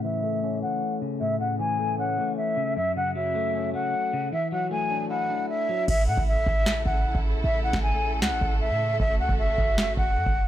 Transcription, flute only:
0.04 E5
0.62 F#5
1.20 E5
1.40 F#5
1.59 G#5
1.99 F#5
2.37 E5
2.77 E5
2.96 F#5
3.15 E5
3.74 F#5
4.33 E5
4.52 F#5
4.71 G#5
5.10 F#5
5.49 E5
5.88 E5
6.08 F#5
6.27 E5
6.85 F#5
7.44 E5
7.63 F#5
7.83 G#5
8.22 F#5
8.61 E5
9.00 E5
9.20 F#5
9.38 E5
9.97 F#5

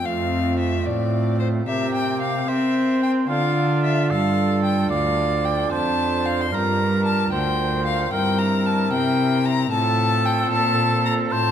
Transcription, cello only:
0.05 F2
0.86 A2
1.68 C3
2.49 C4
3.29 D3
4.11 G2
4.92 D2
5.72 F2
6.52 G2
7.32 D2
8.13 G2
8.93 C3
9.71 A2
10.52 A#2
11.32 A2

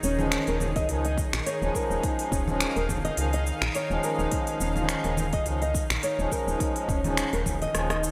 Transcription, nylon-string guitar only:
0.04 C#4
0.48 A#4
0.76 D#5
1.05 D#5
1.46 C#5
1.75 A#4
2.03 D#4
2.32 C#4
2.76 A#4
3.05 D#5
3.34 D#5
3.75 C#5
4.04 A#4
4.32 D#4
4.60 C#4
5.05 A#4
5.33 D#5
5.62 D#5
6.03 C#5
6.32 A#4
6.60 D#4
6.89 C#4
7.33 A#4
7.62 D#5
7.91 D#5

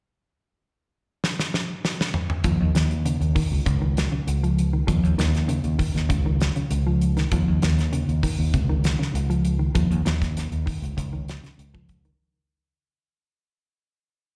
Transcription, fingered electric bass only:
2.44 D#2
2.60 D#2
2.75 D#2
3.21 D#2
3.52 C#2
3.66 C#2
4.12 muted fingered electric bass stroke
4.27 C#2
4.88 D#2
5.03 D#2
5.18 D#2
5.64 D#2
5.95 D#2
6.10 C#2
6.56 muted fingered electric bass stroke
6.71 C#2
7.32 D#2
7.48 D#2
7.63 D#2
8.09 D#2
8.39 D#2
8.54 C#2
9.00 muted fingered electric bass stroke
9.14 C#2
9.75 D#2
9.91 D#2
10.05 D#2
10.52 D#2
10.82 C#2
10.98 C#2
11.44 muted fingered electric bass stroke
11.58 C#2

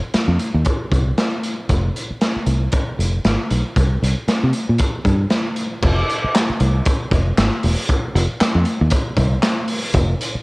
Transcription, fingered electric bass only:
0.15 muted fingered electric bass stroke
0.28 F2
0.54 D#2
0.92 C2
1.70 F1
2.11 muted fingered electric bass stroke
2.36 muted fingered electric bass stroke
2.47 C2
2.99 F1
3.25 G#1
3.51 B1
3.77 C2
4.03 C2
4.28 muted fingered electric bass stroke
4.43 C3
4.69 A#2
5.05 G2
5.83 F1
6.24 muted fingered electric bass stroke
6.50 muted fingered electric bass stroke
6.60 C2
7.12 F1
7.38 G#1
7.64 E1
8.15 F1
8.41 muted fingered electric bass stroke
8.55 F2
8.81 D#2
9.17 C2
9.94 F1
10.35 muted fingered electric bass stroke

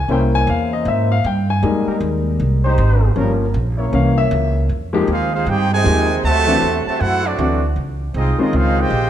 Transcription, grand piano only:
0.09 A#3 C#4 E4 G5
0.35 G#5
0.50 F5
0.73 D#5
0.88 E5
1.12 F5
1.26 G5
1.50 G#5
1.63 G3 G#3 A#3 D#4
3.16 F3 A#3 C#4
3.92 E3 A#3 C#4 F5
4.18 E5
4.93 F3 G#3 A#3 D#4 G4
5.84 F3 G#3 A#3 D#4 G4
6.47 E3 A3 C4 D4 F#4
7.38 E3 A3 C4 D4 F#4
8.38 D#3 G#3 C4 C#4 F4

